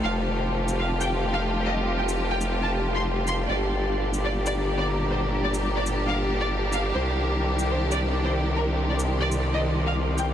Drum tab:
SH |------x--x------|---x--x-------x-|------x--x------|---x--x-------x-|

SH |------x--x------|---x--x-------x-|